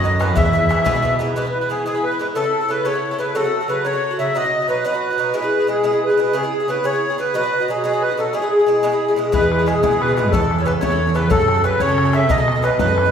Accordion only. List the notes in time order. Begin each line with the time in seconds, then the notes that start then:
Already playing: D#5
0.20 B4
0.35 E5
1.36 B4
1.49 B4
1.60 B4
1.71 G#4
1.86 G#4
2.04 B4
2.20 B4
2.35 A4
2.70 B4
2.85 C#5
3.19 B4
3.35 A4
3.69 B4
3.85 C#5
4.19 E5
4.35 D#5
4.70 B4
4.85 B4
5.36 B4
5.71 G#4
5.86 G#4
6.04 B4
6.21 B4
6.36 G#4
6.69 B4
6.86 C#5
7.20 B4
7.36 B4
7.69 G#4
7.84 G#4
8.02 B4
8.19 A4
8.35 G#4
9.33 B4
9.67 G#4
9.83 G#4
10.00 B4
10.15 B4
10.31 A4
10.61 C#5
10.66 B4
10.80 C#5
11.15 B4
11.30 A4
11.64 B4
11.80 C#5
12.15 E5
12.30 D#5
12.63 B4
12.79 B4